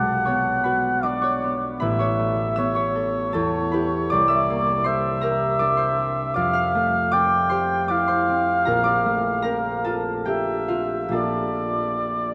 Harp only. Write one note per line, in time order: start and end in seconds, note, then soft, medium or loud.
0.00 1.85 B1 soft
0.00 1.85 G#3 soft
0.00 0.64 B4 soft
0.00 1.03 D5 medium
0.00 0.62 B5 medium
0.00 1.02 D6 medium
0.25 1.43 B3 soft
0.25 1.22 C#5 medium
0.25 0.92 C#6 medium
0.64 1.85 F#4 soft
0.64 1.80 B4 medium
0.64 1.79 B5 medium
1.03 1.85 D4 soft
1.03 1.85 D5 medium
1.03 1.84 D6 medium
1.22 1.99 C#5 medium
1.22 1.98 C#6 medium
1.44 2.56 B3 soft
1.80 3.37 A1 medium
1.80 3.72 B4 medium
1.80 3.70 B5 medium
1.99 2.75 C#5 medium
1.99 2.74 C#6 medium
2.20 3.37 A3 soft
2.56 4.14 B3 soft
2.56 4.28 E5 medium
2.56 4.27 E6 medium
2.75 4.14 C#5 medium
2.75 4.13 C#6 medium
2.95 3.33 A4 soft
3.33 4.14 E2 medium
3.33 4.14 A4 medium
3.33 3.99 A5 medium
3.71 7.63 E4 soft
3.71 5.22 G4 soft
3.71 4.14 B4 medium
3.71 4.13 B5 medium
4.10 6.40 C2 medium
4.10 5.59 D5 medium
4.10 5.58 D6 medium
4.28 8.20 E5 medium
4.28 8.18 E6 medium
4.50 6.40 A#3 soft
4.84 5.98 C4 medium
4.84 5.77 C5 medium
4.84 5.76 C6 medium
5.21 7.50 G4 soft
5.21 6.39 A#4 medium
5.21 6.39 A#5 medium
5.59 6.40 D4 soft
5.59 6.34 D5 medium
5.59 6.33 D6 medium
5.77 7.50 C5 medium
5.77 7.48 C6 medium
5.99 7.12 C4 soft
6.34 8.71 F2 medium
6.34 7.11 D5 medium
6.34 7.10 D6 medium
6.53 10.45 F5 medium
6.53 10.43 F6 medium
6.75 9.04 A3 medium
7.12 8.28 C4 medium
7.12 7.88 D5 medium
7.12 7.78 D6 loud
7.49 8.71 G4 soft
7.49 8.07 C5 medium
7.49 8.06 C6 medium
7.88 8.71 E4 soft
7.88 8.84 D5 medium
7.88 8.22 D6 medium
8.08 11.17 C5 medium
8.08 11.17 C6 medium
8.29 9.43 C4 soft
8.65 11.07 A#1 medium
8.65 9.43 A#4 medium
8.65 9.41 A#5 medium
8.84 12.34 D5 medium
8.84 12.34 D6 medium
9.06 12.34 A3 soft
9.42 10.69 C4 soft
9.42 12.34 A#4 medium
9.42 12.34 A#5 medium
9.85 10.68 F4 soft
9.85 11.11 A4 medium
9.85 11.11 A5 medium
10.25 11.10 D4 soft
10.25 11.18 G4 medium
10.25 11.00 G5 medium
10.68 11.18 C4 soft
10.68 11.11 F4 soft
10.68 12.34 F5 medium
11.09 12.34 A#1 soft
11.09 12.34 A#3 soft
11.09 12.34 D4 soft
11.09 12.34 F4 soft
11.09 12.34 A5 medium
11.13 12.34 A4 soft